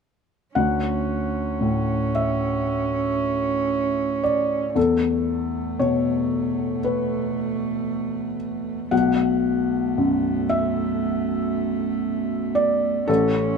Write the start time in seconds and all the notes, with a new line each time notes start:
0.55 D2 C#4 F#5
1.61 A2
2.15 E5
4.23 D5
4.75 E2 A3 A4
5.79 B2 C#5
6.84 B4
8.91 B1 A3 F#5
9.98 F#2
10.49 E5
12.55 D5
13.08 A1 C#4 A4